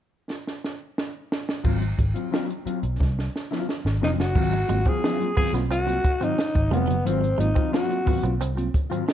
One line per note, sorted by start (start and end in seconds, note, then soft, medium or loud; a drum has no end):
0.30 snare soft
0.47 snare soft
0.64 snare medium
0.98 snare medium
1.32 snare medium
1.49 snare medium
1.64 1.92 G#1 medium
1.64 1.83 F#3 medium
1.64 1.81 C4 medium
1.64 1.79 F4 medium
1.64 kick loud
1.64 crash medium
1.81 muted clean electric guitar stroke soft
1.81 closed hi-hat soft
1.97 2.12 G#1 medium
1.97 muted clean electric guitar stroke soft
1.97 kick medium
1.97 closed hi-hat medium
2.14 2.30 F#3 medium
2.14 2.30 C4 medium
2.14 2.30 F4 medium
2.14 closed hi-hat soft
2.31 2.51 F#3 medium
2.31 2.48 C4 medium
2.31 2.48 F4 loud
2.31 snare loud
2.49 muted clean electric guitar stroke soft
2.49 closed hi-hat soft
2.65 2.81 F#3 medium
2.65 2.81 C4 medium
2.65 2.81 F4 medium
2.65 muted picked electric bass stroke soft
2.65 closed hi-hat medium
2.83 2.97 B1 medium
2.83 muted clean electric guitar stroke soft
2.83 closed hi-hat soft
3.00 3.28 C2 medium
3.00 muted clean electric guitar stroke soft
3.00 kick medium
3.00 snare soft
3.17 muted clean electric guitar stroke soft
3.17 snare soft
3.36 snare medium
3.51 3.67 F#3 medium
3.51 3.68 C4 medium
3.51 3.69 F4 medium
3.51 snare medium
3.69 muted clean electric guitar stroke soft
3.69 snare medium
3.85 3.99 G#1 medium
3.85 muted clean electric guitar stroke soft
3.85 snare medium
4.01 4.16 F1 medium
4.01 4.20 F#3 medium
4.01 4.18 C4 medium
4.01 4.11 D#4 medium
4.01 4.18 F4 medium
4.01 snare medium
4.18 4.32 F#1 medium
4.18 4.90 F#4 loud
4.18 muted clean electric guitar stroke soft
4.18 snare medium
4.35 4.63 G#1 loud
4.35 4.46 G#2 medium
4.35 4.46 D#3 medium
4.35 4.54 F#3 medium
4.35 4.53 C4 medium
4.35 4.52 F4 medium
4.35 kick loud
4.35 crash medium
4.52 4.59 C4 soft
4.52 4.59 F4 soft
4.52 muted clean electric guitar stroke soft
4.52 closed hi-hat soft
4.68 4.83 G#1 medium
4.68 4.79 F#3 medium
4.68 4.80 G#3 medium
4.68 4.79 A#3 medium
4.68 4.79 C4 medium
4.68 4.79 F4 medium
4.68 muted clean electric guitar stroke soft
4.68 closed hi-hat medium
4.85 5.02 F#3 medium
4.85 4.97 C4 medium
4.85 5.02 C4 medium
4.85 5.01 F4 medium
4.85 5.36 G#4 medium
4.85 kick medium
4.85 closed hi-hat medium
5.04 5.23 F#3 medium
5.04 5.21 C4 medium
5.04 5.20 F4 medium
5.04 muted clean electric guitar stroke soft
5.04 snare loud
5.20 5.30 F#3 medium
5.20 5.30 A#3 medium
5.20 5.30 C4 medium
5.20 5.30 F4 medium
5.20 muted clean electric guitar stroke soft
5.20 closed hi-hat medium
5.37 5.47 G#2 medium
5.37 5.47 D#3 medium
5.37 5.52 F#3 medium
5.37 5.47 B3 medium
5.37 5.52 C4 medium
5.37 5.53 F4 medium
5.37 5.52 G#4 loud
5.37 muted picked electric bass stroke soft
5.37 kick medium
5.37 open hi-hat medium
5.53 5.71 B1 medium
5.53 5.63 F#3 medium
5.53 5.63 A#3 medium
5.53 5.64 B3 medium
5.53 5.64 C4 medium
5.53 5.64 F4 medium
5.53 muted clean electric guitar stroke soft
5.53 snare soft
5.53 closed hi-hat medium
5.71 5.98 C2 medium
5.71 5.81 C4 medium
5.71 6.25 F#4 loud
5.71 muted clean electric guitar stroke soft
5.71 closed hi-hat loud
5.86 5.97 F#3 medium
5.86 5.97 A#3 medium
5.86 5.97 C4 medium
5.86 5.97 F4 medium
5.86 muted clean electric guitar stroke soft
5.86 closed hi-hat medium
6.05 kick medium
6.05 closed hi-hat medium
6.20 6.31 G#2 medium
6.20 6.31 D#3 medium
6.20 6.37 F#3 medium
6.20 6.31 C4 medium
6.20 6.38 C4 medium
6.20 6.75 D#4 medium
6.20 6.38 F4 medium
6.20 closed hi-hat soft
6.38 muted clean electric guitar stroke soft
6.38 snare loud
6.55 6.69 G#1 medium
6.55 muted clean electric guitar stroke soft
6.55 kick medium
6.55 closed hi-hat soft
6.71 6.85 F1 medium
6.71 6.82 F#3 loud
6.71 6.91 F#3 medium
6.71 6.82 G#3 medium
6.71 6.82 A#3 medium
6.71 7.08 B3 medium
6.71 6.82 C4 medium
6.71 6.89 C4 medium
6.71 6.82 F4 medium
6.71 6.88 F4 medium
6.71 closed hi-hat medium
6.88 7.02 F#1 medium
6.88 6.98 F#3 medium
6.88 muted clean electric guitar stroke soft
6.88 closed hi-hat medium
7.05 7.33 G#1 loud
7.05 7.15 G#2 medium
7.05 7.15 D#3 medium
7.05 7.24 F#3 medium
7.05 7.41 C4 medium
7.05 7.22 C4 medium
7.05 7.21 F4 medium
7.05 closed hi-hat medium
7.22 7.29 C4 soft
7.22 7.29 F4 soft
7.22 muted clean electric guitar stroke medium
7.22 closed hi-hat soft
7.38 7.53 G#1 medium
7.38 7.49 F#3 medium
7.38 7.49 G#3 medium
7.38 7.49 A#3 medium
7.38 7.49 C4 medium
7.38 7.72 D#4 medium
7.38 7.49 F4 medium
7.38 muted clean electric guitar stroke medium
7.38 closed hi-hat medium
7.55 7.70 F#3 soft
7.55 7.70 C4 medium
7.55 7.66 C4 medium
7.55 7.70 F4 medium
7.55 kick medium
7.55 closed hi-hat medium
7.71 7.91 F#3 medium
7.71 7.89 C4 medium
7.71 7.88 F4 loud
7.71 8.36 F#4 medium
7.71 muted clean electric guitar stroke soft
7.71 snare loud
7.89 8.00 F#3 medium
7.89 8.00 A#3 medium
7.89 8.00 C4 medium
7.89 8.00 F4 medium
7.89 muted clean electric guitar stroke medium
7.89 closed hi-hat medium
8.05 8.17 G#2 medium
8.05 8.17 D#3 medium
8.05 8.21 F#3 medium
8.05 8.17 B3 medium
8.05 8.21 C4 medium
8.05 8.20 F4 medium
8.05 muted picked electric bass stroke soft
8.05 kick medium
8.05 open hi-hat medium
8.22 8.41 B1 medium
8.22 8.34 F#3 medium
8.22 8.33 A#3 medium
8.22 8.34 B3 medium
8.22 8.34 C4 medium
8.22 8.34 F4 medium
8.22 muted clean electric guitar stroke soft
8.22 closed hi-hat medium
8.39 8.68 C2 loud
8.39 8.51 C4 medium
8.39 muted clean electric guitar stroke soft
8.39 closed hi-hat medium
8.55 8.67 F#3 medium
8.55 8.67 A#3 medium
8.55 8.67 C4 medium
8.55 8.68 F4 medium
8.55 muted clean electric guitar stroke medium
8.55 closed hi-hat medium
8.74 kick medium
8.74 closed hi-hat medium
8.90 9.01 G#2 medium
8.90 9.01 D#3 medium
8.90 9.05 F#3 medium
8.90 9.05 C4 medium
8.90 9.02 C4 medium
8.90 9.06 F4 medium
8.90 closed hi-hat medium
9.06 9.13 C4 soft
9.06 9.13 F4 soft
9.06 muted clean electric guitar stroke soft
9.06 snare loud